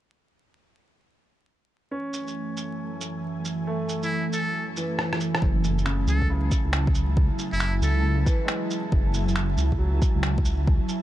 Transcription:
1.91 F#2 E3 A3 C#4 G#5
2.13 shaker
2.27 shaker
2.57 shaker
3.01 shaker
3.45 shaker
3.67 A3
3.89 shaker
4.03 E4, shaker
4.33 A4, shaker
4.76 E3, shaker
4.99 cross-stick
5.13 cross-stick
5.20 shaker
5.35 cross-stick
5.42 F#1 F#3 E4 G#5 A5, kick
5.64 shaker
5.78 shaker
5.85 C#3, finger snap
6.07 C#2 A4, shaker
6.22 kick
6.30 C#3
6.51 kick, shaker
6.65 C#2
6.73 finger snap
6.87 kick
6.95 shaker
7.17 kick
7.39 shaker
7.53 F#1 E4, shaker
7.60 finger snap
7.82 C#2 A4, shaker
8.26 E3, kick, shaker
8.45 G#3, finger snap
8.71 shaker
8.92 F#1, kick
9.14 shaker
9.28 shaker
9.36 finger snap
9.57 C#2, shaker
9.72 kick
9.78 F#3
10.02 kick, shaker
10.15 C#2
10.23 finger snap
10.38 kick
10.45 shaker
10.67 kick
10.89 shaker

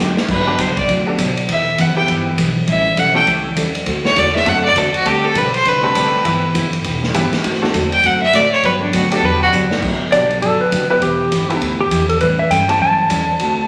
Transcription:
Already playing: G4
0.00 F#2 F#3 B3 D4 G4
0.17 snare
0.28 G2 D3 F#3 B3 D4 G4 B4, kick, crash
0.47 G3 B3 D4 F#4 G4
0.58 C2 D3 F#3 B3 D4 G4 C5, kick, hi-hat pedal, ride
0.77 D5, kick, ride
0.88 D2 D3 F#3 B3 D4 G4, kick, ride
1.06 G3 B3 D4 F#4 A4
1.18 B1 D3 F#3 B3 D4 G4, kick, hi-hat pedal, ride
1.37 ride
1.48 E1 E3 B3 E4 G4 B4 E5, kick, ride
1.78 F#1 E3 B3 E4 G4 B4 F#5, kick, hi-hat pedal, ride
1.96 G3 B3 E4 G4 B4 G5
2.08 G1 E3 B3 E4 G4 B4, kick, ride
2.37 B1 E3 B3 E4 G4 B4, kick, hi-hat pedal, ride
2.67 A1 E3 G3 C#4 E4 A4 E5, kick, ride
2.97 B1 E3 G3 C#4 E4 A4 F#5, kick, hi-hat pedal, ride
3.15 A3 C#4 E4 G4 A4 G5
3.26 C#2 E3 G3 C#4 E4 A4, kick, ride
3.56 E2 E3 G3 C#4 E4 A4, kick, hi-hat pedal, ride
3.75 ride
3.86 D2 D3 A3 C4 F#4 A4, kick, ride
4.05 C#5, snare
4.15 E2 D3 A3 C4 F#4 A4 D5, kick, hi-hat pedal, ride
4.26 snare
4.35 E5, snare
4.46 F#2 D3 A3 C4 D4 F#4 A4 F#5, kick, ride
4.65 D5
4.76 E2 D3 A3 C4 F#4 A4, kick, hi-hat pedal, ride
4.94 F#4, ride
5.05 D2 D3 G3 A3 C4 D4 G4 A4, kick, ride
5.24 A4
5.35 B1 D3 G3 C4 D4 G4 B4, kick, hi-hat pedal, ride
5.54 C5, ride
5.65 C2 D3 G3 C4 D4 G4 B4, kick, ride
5.83 A3 C4 D4 G4 A4
5.95 D2 D3 G3 C4 D4 G4, kick, hi-hat pedal, ride
6.24 G1 E3 G3 B3 E4 G4 B4, kick, ride
6.54 F#1 E3 B3 E4 G4 B4, kick, hi-hat pedal, ride
6.73 ride
6.84 E1 E3 B3 E4 G4 B4, kick, ride
7.03 snare
7.14 G1 E3 G3 B3 E4 G4 B4, kick, hi-hat pedal, ride
7.33 muted upright bass stroke, snare, ride
7.44 D2 D3 A3 C4 F#4 A4, kick, ride
7.54 snare
7.62 A3 C4 D4 F#4 A4, snare
7.73 E2 D3 A3 C4 F#4 A4, kick, hi-hat pedal, ride
7.92 G5, ride
8.03 F#2 D3 A3 C4 F#4 A4 F#5, kick, ride
8.22 E5
8.33 A2 D3 A3 C4 F#4 A4 D5, kick, hi-hat pedal, ride
8.52 C#5
8.63 G2 D3 F#3 B3 D4 G4 B4, kick, ride
8.82 D4
8.93 D2 D3 F#3 B3 D4 F#4 G4, kick, hi-hat pedal, ride
9.11 G3 B3 D4 F#4 G4 A4, ride
9.22 E2 D3 F#3 B3 D4 G4 B4, kick
9.42 F#4
9.52 F#2 D3 F#3 B3 D4 G4, hi-hat pedal
9.71 snare
9.82 D2 D3 F#3 B3 D4 G4, kick, crash
10.01 muted upright bass stroke
10.12 B1 D3 F#3 G3 B3 D4 F#4 G4 D5, kick, hi-hat pedal, ride
10.31 ride
10.42 G1 D3 F#3 B3 D4 G4 A4, kick, ride
10.60 B4, muted upright bass stroke
10.71 F#1 D3 F#3 B3 D4 G4, kick, hi-hat pedal, ride
10.90 G3 B3 E4 G4 B4
11.01 E1 E3 B3 E4 G4 B4, kick, ride
11.31 G1 E3 B3 E4 G4 B4, kick, hi-hat pedal, ride
11.50 G3 B3 E4 G4 B4, ride
11.61 D2 E3 B3 E4 G4 B4, kick, ride
11.80 G4
11.91 E2 E3 B3 E4 G4 B4, kick, hi-hat pedal, ride
12.09 A4, ride
12.21 A2 E3 G3 C#4 E4 A4 B4, kick, ride
12.39 E5
12.50 G2 E3 G3 C#4 E4 A4 G5, kick, hi-hat pedal, ride
12.68 A3 C#4 E4 G4 A4 A5, ride
12.80 F#2 E3 G3 C#4 E4 A4 A5, kick
13.09 E2 E3 G3 C#4 E4 A4, kick, hi-hat pedal, ride
13.39 D2 D3 A3 C4 F#4 A4, kick, ride

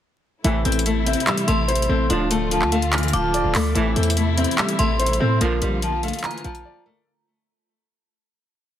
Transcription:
0.44 A1 A2 C3 E3 A3 E4, closed hi-hat
0.65 A1 C4 A4, closed hi-hat
0.72 closed hi-hat
0.79 closed hi-hat
0.86 A3, closed hi-hat
1.06 C4 E5, closed hi-hat
1.13 closed hi-hat
1.20 closed hi-hat
1.27 G3 E6, clap, closed hi-hat
1.38 closed hi-hat
1.48 A1 A3 E5 C6, closed hi-hat
1.68 C5, closed hi-hat
1.75 closed hi-hat
1.82 closed hi-hat
1.89 A1 C4 A4
2.10 D1 A2 D3 F3 D4 F4, closed hi-hat
2.31 A3 A4, closed hi-hat
2.51 F3, closed hi-hat
2.62 D2, clap
2.72 A3 F5, closed hi-hat
2.82 closed hi-hat
2.93 E3 F6, clap, closed hi-hat
2.98 closed hi-hat
3.03 closed hi-hat
3.08 closed hi-hat
3.13 D1 F3 F5 D6, closed hi-hat
3.34 D5, closed hi-hat
3.44 D1
3.55 D2 A3 A4, clap, open hi-hat
3.75 A1 A2 C3 E3 A3 E4, closed hi-hat
3.96 E2 C4 A4, closed hi-hat
4.03 closed hi-hat
4.10 closed hi-hat
4.17 A3, closed hi-hat
4.37 C4 E5, closed hi-hat
4.44 closed hi-hat
4.51 closed hi-hat
4.58 G3 E6, clap, closed hi-hat
4.69 closed hi-hat
4.78 A1 A3 E5 C6, closed hi-hat
4.99 C5, closed hi-hat
5.06 closed hi-hat
5.13 closed hi-hat
5.20 A2 C4 A4
5.41 A#1 A#2 D3 F3 A#3 F4, closed hi-hat
5.62 A#1 G3 A#4, closed hi-hat
5.82 F3, closed hi-hat
6.03 A3 F5, closed hi-hat
6.08 closed hi-hat
6.13 closed hi-hat
6.19 closed hi-hat
6.23 E3 A#5 F6, clap, closed hi-hat
6.31 closed hi-hat
6.38 closed hi-hat
6.44 A#1 F3 F5, closed hi-hat
6.55 closed hi-hat
6.65 D5
6.86 A3 A#4

